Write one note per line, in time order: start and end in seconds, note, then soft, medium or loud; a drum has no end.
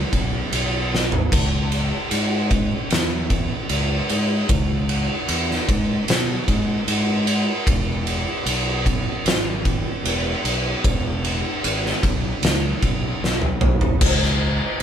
0.13 0.41 B1 medium
0.13 kick medium
0.13 ride medium
0.52 1.10 B1 medium
0.52 ride medium
0.95 snare medium
1.12 floor tom medium
1.32 1.90 C#2 medium
1.32 kick loud
1.32 ride medium
1.32 splash medium
1.72 ride medium
2.11 2.69 G#2 medium
2.11 ride medium
2.51 kick loud
2.51 ride medium
2.90 3.48 E2 loud
2.90 snare loud
2.90 ride medium
3.30 kick medium
3.30 ride medium
3.69 3.98 C#2 medium
3.69 ride medium
4.09 4.39 G#2 medium
4.09 ride medium
4.49 5.07 C#2 medium
4.49 kick loud
4.49 ride medium
4.89 ride medium
5.28 5.57 E2 loud
5.28 ride medium
5.51 snare soft
5.69 5.97 G#2 medium
5.69 kick loud
5.69 ride medium
6.08 6.37 B2 medium
6.08 snare loud
6.08 ride loud
6.48 6.77 G#2 medium
6.48 kick medium
6.48 ride medium
6.87 7.45 G#2 medium
6.87 ride medium
7.27 ride medium
7.67 8.24 E1 medium
7.67 kick loud
7.67 ride medium
8.07 ride medium
8.46 9.03 B1 loud
8.46 ride loud
8.86 kick medium
8.86 ride medium
9.25 9.83 G#1 medium
9.25 snare loud
9.25 ride medium
9.65 kick medium
9.65 ride medium
10.04 10.33 E1 medium
10.04 ride medium
10.44 10.73 B1 medium
10.44 ride medium
10.84 11.42 E1 medium
10.84 kick loud
10.84 ride medium
11.24 ride medium
11.64 11.93 G#1 loud
11.64 ride medium
11.86 snare soft
12.03 12.32 B1 medium
12.03 kick medium
12.03 ride medium
12.42 12.71 C#2 medium
12.42 snare loud
12.42 ride medium
12.82 13.11 B1 medium
12.82 kick medium
12.82 ride medium
13.22 13.80 B1 medium
13.22 snare medium
13.42 mid tom medium
13.61 mid tom medium
13.81 floor tom medium
14.01 14.58 C#2 loud
14.01 kick loud
14.01 crash loud
14.01 crash medium
14.23 snare soft